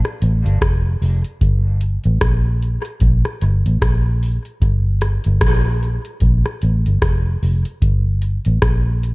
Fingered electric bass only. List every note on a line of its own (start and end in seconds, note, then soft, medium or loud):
0.22 0.42 A1 medium
0.45 0.59 G1 medium
0.62 0.96 F1 medium
1.02 1.22 F1 medium
1.41 1.97 G1 medium
2.05 2.19 A1 medium
2.22 2.77 A#1 medium
3.01 3.22 A#1 loud
3.42 3.62 G1 medium
3.66 3.80 A1 medium
3.82 4.37 A#1 loud
4.62 5.17 G1 loud
5.26 5.40 G1 loud
5.42 5.97 A#1 medium
6.22 6.42 A#1 medium
6.63 6.83 A1 medium
6.86 7.00 G1 medium
7.02 7.37 F1 medium
7.43 7.63 F1 medium
7.82 8.37 G1 medium
8.46 8.60 A1 loud
8.62 9.14 A#1 medium